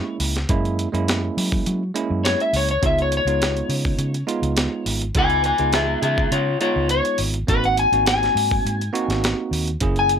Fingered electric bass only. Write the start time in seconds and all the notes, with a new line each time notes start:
0.20 C#2
0.49 F#2
0.93 F#2
1.37 F#3
1.67 F#3
2.10 F#2
2.53 C#2
2.83 C#2
3.25 C#2
3.69 C#3
3.98 C#3
4.42 C#2
4.86 G#1
5.15 C#2
5.59 C#2
6.02 C#3
6.32 C#3
6.76 C#2
7.19 G#1
7.48 G#1
7.92 G#1
8.35 G#2
8.65 G#2
9.08 G#1
9.51 D#2
9.81 F#1